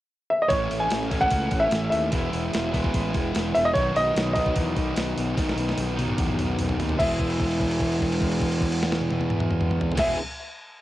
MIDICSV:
0, 0, Header, 1, 5, 480
1, 0, Start_track
1, 0, Key_signature, 4, "major"
1, 0, Tempo, 404858
1, 592, Time_signature, 4, 2, 24, 8
1, 12822, End_track
2, 0, Start_track
2, 0, Title_t, "Upright piano"
2, 0, Program_c, 0, 0
2, 359, Note_on_c, 0, 76, 80
2, 479, Note_off_c, 0, 76, 0
2, 498, Note_on_c, 0, 75, 80
2, 575, Note_on_c, 0, 73, 88
2, 597, Note_off_c, 0, 75, 0
2, 917, Note_off_c, 0, 73, 0
2, 947, Note_on_c, 0, 80, 84
2, 1432, Note_on_c, 0, 78, 102
2, 1445, Note_off_c, 0, 80, 0
2, 1896, Note_on_c, 0, 76, 100
2, 1928, Note_off_c, 0, 78, 0
2, 2235, Note_off_c, 0, 76, 0
2, 2253, Note_on_c, 0, 76, 85
2, 3662, Note_off_c, 0, 76, 0
2, 4202, Note_on_c, 0, 76, 97
2, 4326, Note_off_c, 0, 76, 0
2, 4328, Note_on_c, 0, 75, 97
2, 4381, Note_off_c, 0, 75, 0
2, 4426, Note_on_c, 0, 73, 90
2, 4683, Note_off_c, 0, 73, 0
2, 4699, Note_on_c, 0, 75, 100
2, 5120, Note_off_c, 0, 75, 0
2, 5138, Note_on_c, 0, 75, 78
2, 7751, Note_off_c, 0, 75, 0
2, 8286, Note_on_c, 0, 76, 83
2, 11722, Note_off_c, 0, 76, 0
2, 11847, Note_on_c, 0, 76, 83
2, 12039, Note_off_c, 0, 76, 0
2, 12822, End_track
3, 0, Start_track
3, 0, Title_t, "Distorted electric guitar"
3, 0, Program_c, 1, 30
3, 571, Note_on_c, 1, 45, 73
3, 584, Note_on_c, 1, 52, 77
3, 598, Note_on_c, 1, 57, 79
3, 609, Note_on_c, 1, 61, 75
3, 628, Note_on_c, 1, 64, 83
3, 1288, Note_off_c, 1, 45, 0
3, 1299, Note_off_c, 1, 64, 0
3, 1301, Note_off_c, 1, 57, 0
3, 1302, Note_off_c, 1, 61, 0
3, 1304, Note_on_c, 1, 64, 79
3, 1316, Note_on_c, 1, 61, 70
3, 1330, Note_on_c, 1, 57, 60
3, 1337, Note_off_c, 1, 52, 0
3, 1342, Note_on_c, 1, 52, 61
3, 1353, Note_on_c, 1, 45, 61
3, 2491, Note_off_c, 1, 52, 0
3, 2497, Note_off_c, 1, 64, 0
3, 2503, Note_off_c, 1, 61, 0
3, 2506, Note_on_c, 1, 52, 85
3, 2510, Note_off_c, 1, 57, 0
3, 2521, Note_off_c, 1, 45, 0
3, 2525, Note_on_c, 1, 56, 86
3, 2537, Note_on_c, 1, 59, 82
3, 2551, Note_on_c, 1, 64, 91
3, 3202, Note_off_c, 1, 64, 0
3, 3217, Note_on_c, 1, 64, 77
3, 3219, Note_off_c, 1, 52, 0
3, 3228, Note_off_c, 1, 56, 0
3, 3234, Note_off_c, 1, 59, 0
3, 3239, Note_on_c, 1, 59, 73
3, 3254, Note_on_c, 1, 56, 64
3, 3269, Note_on_c, 1, 52, 65
3, 4418, Note_off_c, 1, 64, 0
3, 4423, Note_on_c, 1, 47, 82
3, 4424, Note_off_c, 1, 52, 0
3, 4429, Note_on_c, 1, 51, 85
3, 4437, Note_off_c, 1, 56, 0
3, 4445, Note_on_c, 1, 54, 94
3, 4454, Note_off_c, 1, 59, 0
3, 4458, Note_on_c, 1, 59, 85
3, 4460, Note_on_c, 1, 63, 76
3, 5145, Note_off_c, 1, 51, 0
3, 5156, Note_off_c, 1, 63, 0
3, 5160, Note_on_c, 1, 63, 77
3, 5169, Note_off_c, 1, 59, 0
3, 5174, Note_on_c, 1, 59, 78
3, 5178, Note_off_c, 1, 54, 0
3, 5183, Note_on_c, 1, 54, 72
3, 5191, Note_on_c, 1, 51, 66
3, 5201, Note_off_c, 1, 47, 0
3, 5206, Note_on_c, 1, 47, 67
3, 6329, Note_off_c, 1, 47, 0
3, 6344, Note_off_c, 1, 51, 0
3, 6344, Note_on_c, 1, 47, 96
3, 6353, Note_off_c, 1, 63, 0
3, 6356, Note_off_c, 1, 54, 0
3, 6358, Note_on_c, 1, 51, 84
3, 6370, Note_on_c, 1, 54, 74
3, 6374, Note_off_c, 1, 59, 0
3, 6379, Note_on_c, 1, 59, 83
3, 6392, Note_on_c, 1, 63, 92
3, 7054, Note_off_c, 1, 63, 0
3, 7064, Note_off_c, 1, 47, 0
3, 7068, Note_on_c, 1, 63, 83
3, 7070, Note_off_c, 1, 59, 0
3, 7071, Note_off_c, 1, 51, 0
3, 7077, Note_off_c, 1, 54, 0
3, 7084, Note_on_c, 1, 59, 76
3, 7102, Note_on_c, 1, 54, 70
3, 7112, Note_on_c, 1, 51, 60
3, 7118, Note_on_c, 1, 47, 72
3, 8260, Note_off_c, 1, 51, 0
3, 8265, Note_on_c, 1, 52, 86
3, 8266, Note_off_c, 1, 63, 0
3, 8271, Note_off_c, 1, 54, 0
3, 8274, Note_off_c, 1, 59, 0
3, 8275, Note_on_c, 1, 56, 85
3, 8289, Note_on_c, 1, 59, 83
3, 8291, Note_off_c, 1, 47, 0
3, 8304, Note_on_c, 1, 64, 84
3, 8313, Note_on_c, 1, 68, 95
3, 11792, Note_off_c, 1, 52, 0
3, 11797, Note_on_c, 1, 52, 90
3, 11801, Note_off_c, 1, 56, 0
3, 11806, Note_on_c, 1, 56, 90
3, 11809, Note_off_c, 1, 59, 0
3, 11813, Note_on_c, 1, 59, 94
3, 11819, Note_off_c, 1, 64, 0
3, 11823, Note_on_c, 1, 64, 91
3, 11834, Note_off_c, 1, 68, 0
3, 11839, Note_on_c, 1, 68, 94
3, 12028, Note_off_c, 1, 52, 0
3, 12033, Note_off_c, 1, 56, 0
3, 12037, Note_off_c, 1, 59, 0
3, 12042, Note_off_c, 1, 64, 0
3, 12049, Note_off_c, 1, 68, 0
3, 12822, End_track
4, 0, Start_track
4, 0, Title_t, "Fingered electric bass"
4, 0, Program_c, 2, 33
4, 607, Note_on_c, 2, 33, 82
4, 800, Note_off_c, 2, 33, 0
4, 847, Note_on_c, 2, 33, 74
4, 1040, Note_off_c, 2, 33, 0
4, 1093, Note_on_c, 2, 33, 73
4, 1484, Note_off_c, 2, 33, 0
4, 1562, Note_on_c, 2, 37, 79
4, 1758, Note_off_c, 2, 37, 0
4, 1807, Note_on_c, 2, 33, 69
4, 2001, Note_off_c, 2, 33, 0
4, 2030, Note_on_c, 2, 33, 78
4, 2232, Note_off_c, 2, 33, 0
4, 2282, Note_on_c, 2, 39, 83
4, 2479, Note_off_c, 2, 39, 0
4, 2527, Note_on_c, 2, 28, 89
4, 2722, Note_off_c, 2, 28, 0
4, 2760, Note_on_c, 2, 28, 76
4, 2959, Note_off_c, 2, 28, 0
4, 3021, Note_on_c, 2, 28, 76
4, 3412, Note_off_c, 2, 28, 0
4, 3489, Note_on_c, 2, 33, 84
4, 3685, Note_off_c, 2, 33, 0
4, 3728, Note_on_c, 2, 28, 78
4, 3925, Note_off_c, 2, 28, 0
4, 3977, Note_on_c, 2, 28, 87
4, 4171, Note_off_c, 2, 28, 0
4, 4218, Note_on_c, 2, 28, 90
4, 4412, Note_off_c, 2, 28, 0
4, 4452, Note_on_c, 2, 35, 79
4, 4649, Note_off_c, 2, 35, 0
4, 4690, Note_on_c, 2, 35, 76
4, 4888, Note_off_c, 2, 35, 0
4, 4929, Note_on_c, 2, 35, 78
4, 5328, Note_off_c, 2, 35, 0
4, 5419, Note_on_c, 2, 40, 84
4, 5615, Note_off_c, 2, 40, 0
4, 5655, Note_on_c, 2, 35, 73
4, 5852, Note_off_c, 2, 35, 0
4, 5893, Note_on_c, 2, 35, 92
4, 6091, Note_off_c, 2, 35, 0
4, 6137, Note_on_c, 2, 35, 83
4, 6334, Note_off_c, 2, 35, 0
4, 6380, Note_on_c, 2, 35, 93
4, 6576, Note_off_c, 2, 35, 0
4, 6594, Note_on_c, 2, 35, 76
4, 6801, Note_off_c, 2, 35, 0
4, 6856, Note_on_c, 2, 35, 80
4, 7254, Note_off_c, 2, 35, 0
4, 7333, Note_on_c, 2, 40, 92
4, 7533, Note_off_c, 2, 40, 0
4, 7593, Note_on_c, 2, 35, 77
4, 7784, Note_off_c, 2, 35, 0
4, 7826, Note_on_c, 2, 35, 82
4, 8020, Note_off_c, 2, 35, 0
4, 8045, Note_on_c, 2, 39, 81
4, 8248, Note_off_c, 2, 39, 0
4, 8296, Note_on_c, 2, 28, 74
4, 11728, Note_off_c, 2, 28, 0
4, 11837, Note_on_c, 2, 28, 79
4, 12033, Note_off_c, 2, 28, 0
4, 12822, End_track
5, 0, Start_track
5, 0, Title_t, "Drums"
5, 596, Note_on_c, 9, 46, 69
5, 600, Note_on_c, 9, 36, 101
5, 714, Note_off_c, 9, 46, 0
5, 718, Note_off_c, 9, 36, 0
5, 840, Note_on_c, 9, 46, 50
5, 959, Note_off_c, 9, 46, 0
5, 1073, Note_on_c, 9, 46, 67
5, 1087, Note_on_c, 9, 38, 90
5, 1191, Note_off_c, 9, 46, 0
5, 1205, Note_off_c, 9, 38, 0
5, 1219, Note_on_c, 9, 38, 29
5, 1321, Note_on_c, 9, 36, 75
5, 1321, Note_on_c, 9, 46, 46
5, 1337, Note_off_c, 9, 38, 0
5, 1439, Note_off_c, 9, 36, 0
5, 1439, Note_off_c, 9, 46, 0
5, 1440, Note_on_c, 9, 36, 72
5, 1547, Note_on_c, 9, 46, 73
5, 1558, Note_off_c, 9, 36, 0
5, 1558, Note_on_c, 9, 36, 84
5, 1666, Note_off_c, 9, 46, 0
5, 1676, Note_off_c, 9, 36, 0
5, 1791, Note_on_c, 9, 46, 49
5, 1798, Note_on_c, 9, 36, 78
5, 1910, Note_off_c, 9, 46, 0
5, 1917, Note_off_c, 9, 36, 0
5, 2030, Note_on_c, 9, 46, 67
5, 2044, Note_on_c, 9, 38, 99
5, 2148, Note_off_c, 9, 46, 0
5, 2163, Note_off_c, 9, 38, 0
5, 2279, Note_on_c, 9, 46, 51
5, 2397, Note_off_c, 9, 46, 0
5, 2512, Note_on_c, 9, 46, 64
5, 2522, Note_on_c, 9, 36, 97
5, 2631, Note_off_c, 9, 46, 0
5, 2640, Note_off_c, 9, 36, 0
5, 2765, Note_on_c, 9, 46, 48
5, 2883, Note_off_c, 9, 46, 0
5, 3004, Note_on_c, 9, 46, 65
5, 3018, Note_on_c, 9, 38, 102
5, 3123, Note_off_c, 9, 46, 0
5, 3137, Note_off_c, 9, 38, 0
5, 3148, Note_on_c, 9, 38, 25
5, 3247, Note_on_c, 9, 36, 70
5, 3252, Note_on_c, 9, 46, 48
5, 3267, Note_off_c, 9, 38, 0
5, 3366, Note_off_c, 9, 36, 0
5, 3368, Note_on_c, 9, 36, 73
5, 3370, Note_off_c, 9, 46, 0
5, 3390, Note_on_c, 9, 38, 30
5, 3484, Note_on_c, 9, 46, 67
5, 3487, Note_off_c, 9, 36, 0
5, 3487, Note_on_c, 9, 36, 81
5, 3509, Note_off_c, 9, 38, 0
5, 3603, Note_off_c, 9, 46, 0
5, 3606, Note_off_c, 9, 36, 0
5, 3725, Note_on_c, 9, 46, 45
5, 3727, Note_on_c, 9, 36, 78
5, 3843, Note_off_c, 9, 46, 0
5, 3846, Note_off_c, 9, 36, 0
5, 3967, Note_on_c, 9, 46, 66
5, 3981, Note_on_c, 9, 38, 95
5, 4085, Note_off_c, 9, 46, 0
5, 4099, Note_off_c, 9, 38, 0
5, 4212, Note_on_c, 9, 46, 50
5, 4330, Note_off_c, 9, 46, 0
5, 4450, Note_on_c, 9, 46, 60
5, 4451, Note_on_c, 9, 36, 99
5, 4568, Note_off_c, 9, 46, 0
5, 4569, Note_off_c, 9, 36, 0
5, 4694, Note_on_c, 9, 46, 42
5, 4812, Note_off_c, 9, 46, 0
5, 4937, Note_on_c, 9, 46, 66
5, 4951, Note_on_c, 9, 38, 106
5, 5056, Note_off_c, 9, 46, 0
5, 5065, Note_off_c, 9, 38, 0
5, 5065, Note_on_c, 9, 38, 29
5, 5163, Note_on_c, 9, 46, 53
5, 5168, Note_on_c, 9, 36, 74
5, 5184, Note_off_c, 9, 38, 0
5, 5282, Note_off_c, 9, 46, 0
5, 5287, Note_off_c, 9, 36, 0
5, 5289, Note_on_c, 9, 36, 73
5, 5402, Note_on_c, 9, 46, 68
5, 5408, Note_off_c, 9, 36, 0
5, 5408, Note_on_c, 9, 36, 92
5, 5521, Note_off_c, 9, 46, 0
5, 5527, Note_off_c, 9, 36, 0
5, 5649, Note_on_c, 9, 36, 72
5, 5649, Note_on_c, 9, 46, 51
5, 5767, Note_off_c, 9, 36, 0
5, 5768, Note_off_c, 9, 46, 0
5, 5885, Note_on_c, 9, 46, 72
5, 5899, Note_on_c, 9, 38, 100
5, 6003, Note_off_c, 9, 46, 0
5, 6018, Note_off_c, 9, 38, 0
5, 6136, Note_on_c, 9, 46, 58
5, 6255, Note_off_c, 9, 46, 0
5, 6373, Note_on_c, 9, 36, 107
5, 6379, Note_on_c, 9, 46, 70
5, 6393, Note_on_c, 9, 38, 53
5, 6492, Note_off_c, 9, 36, 0
5, 6498, Note_off_c, 9, 46, 0
5, 6512, Note_off_c, 9, 38, 0
5, 6513, Note_on_c, 9, 38, 55
5, 6612, Note_on_c, 9, 46, 53
5, 6632, Note_off_c, 9, 38, 0
5, 6730, Note_off_c, 9, 46, 0
5, 6746, Note_on_c, 9, 38, 54
5, 6849, Note_on_c, 9, 46, 68
5, 6849, Note_on_c, 9, 48, 64
5, 6865, Note_off_c, 9, 38, 0
5, 6967, Note_off_c, 9, 46, 0
5, 6967, Note_off_c, 9, 48, 0
5, 7101, Note_on_c, 9, 46, 47
5, 7101, Note_on_c, 9, 48, 65
5, 7208, Note_on_c, 9, 47, 60
5, 7219, Note_off_c, 9, 46, 0
5, 7219, Note_off_c, 9, 48, 0
5, 7327, Note_off_c, 9, 47, 0
5, 7329, Note_on_c, 9, 46, 67
5, 7333, Note_on_c, 9, 36, 113
5, 7447, Note_on_c, 9, 47, 62
5, 7448, Note_off_c, 9, 46, 0
5, 7451, Note_off_c, 9, 36, 0
5, 7566, Note_off_c, 9, 47, 0
5, 7575, Note_on_c, 9, 45, 75
5, 7575, Note_on_c, 9, 46, 47
5, 7694, Note_off_c, 9, 45, 0
5, 7694, Note_off_c, 9, 46, 0
5, 7810, Note_on_c, 9, 45, 82
5, 7810, Note_on_c, 9, 46, 64
5, 7928, Note_off_c, 9, 45, 0
5, 7928, Note_off_c, 9, 46, 0
5, 7935, Note_on_c, 9, 43, 80
5, 8053, Note_off_c, 9, 43, 0
5, 8059, Note_on_c, 9, 43, 91
5, 8059, Note_on_c, 9, 46, 47
5, 8172, Note_off_c, 9, 43, 0
5, 8172, Note_on_c, 9, 43, 84
5, 8178, Note_off_c, 9, 46, 0
5, 8291, Note_off_c, 9, 43, 0
5, 8295, Note_on_c, 9, 36, 104
5, 8301, Note_on_c, 9, 49, 83
5, 8413, Note_off_c, 9, 36, 0
5, 8419, Note_off_c, 9, 49, 0
5, 8532, Note_on_c, 9, 36, 60
5, 8535, Note_on_c, 9, 49, 38
5, 8650, Note_off_c, 9, 36, 0
5, 8654, Note_off_c, 9, 49, 0
5, 8654, Note_on_c, 9, 57, 39
5, 8770, Note_on_c, 9, 36, 61
5, 8772, Note_off_c, 9, 57, 0
5, 8779, Note_on_c, 9, 49, 41
5, 8889, Note_off_c, 9, 36, 0
5, 8898, Note_off_c, 9, 49, 0
5, 8901, Note_on_c, 9, 57, 40
5, 9011, Note_on_c, 9, 36, 58
5, 9019, Note_off_c, 9, 57, 0
5, 9022, Note_on_c, 9, 49, 41
5, 9130, Note_off_c, 9, 36, 0
5, 9141, Note_off_c, 9, 49, 0
5, 9142, Note_on_c, 9, 57, 45
5, 9249, Note_on_c, 9, 36, 58
5, 9255, Note_on_c, 9, 49, 42
5, 9261, Note_off_c, 9, 57, 0
5, 9368, Note_off_c, 9, 36, 0
5, 9374, Note_off_c, 9, 49, 0
5, 9390, Note_on_c, 9, 57, 43
5, 9491, Note_on_c, 9, 36, 55
5, 9508, Note_off_c, 9, 57, 0
5, 9508, Note_on_c, 9, 49, 40
5, 9610, Note_off_c, 9, 36, 0
5, 9626, Note_off_c, 9, 49, 0
5, 9630, Note_on_c, 9, 57, 44
5, 9731, Note_on_c, 9, 36, 62
5, 9742, Note_on_c, 9, 49, 44
5, 9749, Note_off_c, 9, 57, 0
5, 9850, Note_off_c, 9, 36, 0
5, 9860, Note_on_c, 9, 57, 48
5, 9861, Note_off_c, 9, 49, 0
5, 9967, Note_on_c, 9, 36, 60
5, 9976, Note_on_c, 9, 49, 49
5, 9978, Note_off_c, 9, 57, 0
5, 10085, Note_off_c, 9, 36, 0
5, 10095, Note_off_c, 9, 49, 0
5, 10103, Note_on_c, 9, 57, 47
5, 10206, Note_on_c, 9, 36, 62
5, 10219, Note_on_c, 9, 49, 50
5, 10222, Note_off_c, 9, 57, 0
5, 10324, Note_off_c, 9, 36, 0
5, 10337, Note_off_c, 9, 49, 0
5, 10341, Note_on_c, 9, 57, 55
5, 10460, Note_off_c, 9, 57, 0
5, 10467, Note_on_c, 9, 38, 79
5, 10580, Note_off_c, 9, 38, 0
5, 10580, Note_on_c, 9, 38, 87
5, 10686, Note_on_c, 9, 48, 80
5, 10698, Note_off_c, 9, 38, 0
5, 10796, Note_off_c, 9, 48, 0
5, 10796, Note_on_c, 9, 48, 88
5, 10915, Note_off_c, 9, 48, 0
5, 10918, Note_on_c, 9, 48, 79
5, 11029, Note_on_c, 9, 47, 86
5, 11036, Note_off_c, 9, 48, 0
5, 11148, Note_off_c, 9, 47, 0
5, 11149, Note_on_c, 9, 47, 95
5, 11267, Note_off_c, 9, 47, 0
5, 11271, Note_on_c, 9, 45, 89
5, 11389, Note_off_c, 9, 45, 0
5, 11390, Note_on_c, 9, 45, 90
5, 11509, Note_off_c, 9, 45, 0
5, 11512, Note_on_c, 9, 45, 90
5, 11630, Note_off_c, 9, 45, 0
5, 11632, Note_on_c, 9, 43, 85
5, 11750, Note_off_c, 9, 43, 0
5, 11757, Note_on_c, 9, 43, 95
5, 11826, Note_on_c, 9, 49, 106
5, 11829, Note_on_c, 9, 36, 105
5, 11840, Note_on_c, 9, 38, 93
5, 11876, Note_off_c, 9, 43, 0
5, 11944, Note_off_c, 9, 49, 0
5, 11947, Note_off_c, 9, 36, 0
5, 11959, Note_off_c, 9, 38, 0
5, 12822, End_track
0, 0, End_of_file